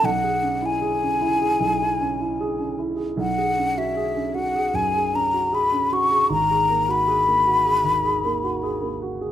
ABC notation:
X:1
M:4/4
L:1/16
Q:1/4=77
K:C#dor
V:1 name="Flute"
f3 g8- g3 z2 | f3 e3 f2 g2 a2 b2 c'2 | a3 b8- b3 z2 |]
V:2 name="Grand piano"
B,,, G C E G C E G B,,, E C E G C E G | B,,, G C F G C F G F,, G C F G C F G | G,,, G A, F G A, F G D,, G A, F G A, F G |]